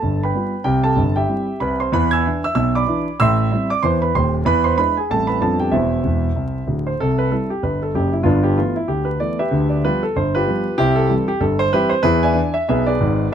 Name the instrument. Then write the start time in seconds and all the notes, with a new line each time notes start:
grand piano
Already playing: A4 A5
0.02 G1 G2
0.23 B4 G5 B5
0.35 G3 B3 F4
0.64 C2 C3 G4 G5
0.83 A4 A5
0.96 G1 G2
1.16 G4 E5 G5
1.29 G3 C4 E4
1.60 C2 C3 B4 B5
1.80 C5 C6
1.92 E2 E3 B4 B5
2.11 G#5 E6 G#6
2.26 E3 D4 E4
2.44 E5 E6
2.55 B1 B2 E5 E6
2.75 D5 B5 D6
2.87 E3 D4 E4
3.20 A1 A2 E5 C6 E6
3.52 G3 C4 E4
3.70 D5 D6
3.83 E2 E3 C5 C6
4.02 B4 B5
4.14 D#1 D#2 C5 C6
4.45 E2 E3 B4 B5
4.64 C5 C6
4.78 G#3 D4 E4 B4 B5
4.97 G#4 G#5
5.10 A1 A2 G3 C4 E4 A4 A5
5.27 B4 B5
5.41 F2 F3 G3 B3 D4 A4 A5
5.60 G4 G5
5.71 E1 E2 E4 C5 E5
6.04 E1 E2
6.35 C2
6.67 D1 D2
6.87 C5
7.00 C2 C3 A4
7.18 B4
7.31 G3 C4 E4 A4
7.50 G4
7.63 G1 G2 B4
7.83 A4
7.94 F#1 F#2 G4
8.13 E4
8.23 G1 G2 B3 D4 F4
8.43 G4
8.57 E3 A3 B3 F4
8.76 E4
8.88 D2 D3 G4
9.05 B4
9.20 E3 A3 B3 D5
9.39 G4 B4 E5
9.51 D2 D3
9.69 D5
9.84 F3 G3 B3 F4 G4 B4
10.03 A4
10.16 G1 G2 C5
10.35 F4 G4 B4
10.47 F3 G3 B3
10.78 C2 C3 C4 E4 G4
10.96 A4
11.09 E3 G3 C4
11.28 G4
11.40 G1 G2 A4
11.59 C5
11.73 E3 G3 C4 E4 G4 B4
11.90 C5
12.03 E2 E3 E4 G#4 B4
12.23 D5 E5 G#5
12.34 E3 D4
12.54 E5
12.68 B1 B2 G#4 B4 E5
12.86 G#4 B4 D5
13.00 G#1 G#2